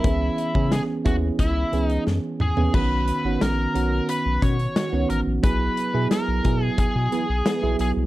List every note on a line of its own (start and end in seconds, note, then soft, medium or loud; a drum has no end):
0.00 0.49 E3 medium
0.00 0.75 E4 medium
0.04 0.30 C#2 loud
0.04 0.49 B3 medium
0.04 0.49 C#4 medium
0.04 0.49 G#4 medium
0.04 kick loud
0.04 closed hi-hat medium
0.38 closed hi-hat medium
0.54 0.80 C#3 medium
0.54 0.99 E3 medium
0.54 0.99 B3 medium
0.54 1.00 C#4 medium
0.54 1.00 G#4 medium
0.54 kick medium
0.72 0.81 G#4 medium
0.72 snare loud
0.72 closed hi-hat medium
1.05 1.31 D#2 medium
1.05 1.65 B3 medium
1.05 1.65 C#4 medium
1.05 1.65 E4 medium
1.05 1.15 F#4 medium
1.05 1.65 G#4 medium
1.05 kick medium
1.05 closed hi-hat medium
1.39 1.64 C#2 medium
1.39 1.84 E4 medium
1.39 kick medium
1.39 closed hi-hat medium
1.72 1.98 C#2 medium
1.72 2.47 E3 medium
1.72 2.47 B3 medium
1.72 2.47 C#4 medium
1.72 2.47 G#4 medium
1.72 closed hi-hat medium
1.84 2.03 D#4 medium
1.90 closed hi-hat soft
2.07 2.20 F#2 medium
2.07 snare medium
2.40 2.53 E2 medium
2.40 2.72 G#4 medium
2.40 mid tom medium
2.57 2.70 D#2 medium
2.57 2.72 E3 medium
2.57 2.72 B3 medium
2.57 2.72 C#4 medium
2.57 2.72 G#4 medium
2.57 floor tom medium
2.73 3.12 B1 loud
2.73 3.18 D#3 medium
2.73 3.18 B3 medium
2.73 3.19 C#4 medium
2.73 3.19 F#4 medium
2.73 3.42 B4 medium
2.73 kick loud
2.73 crash medium
3.08 closed hi-hat medium
3.24 3.37 G#1 medium
3.24 3.69 D#3 medium
3.24 3.69 B3 medium
3.24 3.69 C#4 medium
3.24 3.70 F#4 medium
3.41 3.67 A#1 medium
3.41 4.09 A#4 medium
3.41 snare loud
3.41 closed hi-hat medium
3.74 4.01 B1 medium
3.74 4.79 D#3 medium
3.74 4.79 B3 medium
3.74 4.79 C#4 medium
3.74 4.79 F#4 medium
3.74 closed hi-hat medium
4.09 4.40 B4 loud
4.09 closed hi-hat medium
4.26 4.39 B1 medium
4.42 4.68 B2 loud
4.42 4.57 D#3 medium
4.42 4.57 C#4 medium
4.42 4.57 F#4 loud
4.42 5.09 C#5 loud
4.42 kick medium
4.42 closed hi-hat medium
4.59 closed hi-hat soft
4.76 5.05 D#3 loud
4.76 5.05 C#4 medium
4.76 5.05 F#4 loud
4.76 snare loud
4.76 closed hi-hat medium
4.92 5.06 C#2 medium
4.92 5.37 D#3 medium
4.92 5.38 B3 medium
4.92 5.38 C#4 medium
4.92 5.38 F#4 medium
5.10 5.23 A1 medium
5.10 5.19 A#4 medium
5.10 closed hi-hat medium
5.27 5.39 A#1 medium
5.43 5.69 B1 loud
5.43 5.88 F#3 medium
5.43 5.88 B3 medium
5.43 5.88 E4 medium
5.43 5.88 G#4 medium
5.43 6.07 B4 medium
5.43 kick loud
5.43 closed hi-hat loud
5.77 closed hi-hat medium
5.94 6.07 B2 medium
5.94 6.38 F#3 medium
5.94 6.39 B3 medium
5.94 6.39 E4 medium
5.94 6.39 G#4 medium
6.11 6.64 A#4 medium
6.11 snare loud
6.11 closed hi-hat medium
6.28 6.41 B1 medium
6.44 6.70 B2 medium
6.44 7.48 F#3 medium
6.44 7.49 B3 medium
6.44 7.49 E4 medium
6.44 7.49 G#4 medium
6.44 kick medium
6.44 closed hi-hat medium
6.64 6.79 G#4 medium
6.78 6.85 B2 soft
6.78 7.76 G#4 medium
6.78 kick medium
6.78 closed hi-hat medium
6.96 7.08 B2 medium
7.12 7.26 E3 medium
7.12 7.26 B3 medium
7.12 7.26 G#4 loud
7.12 closed hi-hat medium
7.29 7.42 B1 medium
7.46 7.75 E3 medium
7.46 7.75 B3 medium
7.46 7.75 G#4 loud
7.46 snare loud
7.46 closed hi-hat medium
7.62 7.76 B1 medium
7.62 8.06 F#3 medium
7.62 8.06 B3 medium
7.62 8.06 E4 medium
7.62 8.06 G#4 medium
7.79 7.92 B1 medium
7.79 7.90 G#4 medium
7.79 closed hi-hat medium
7.97 8.06 C2 medium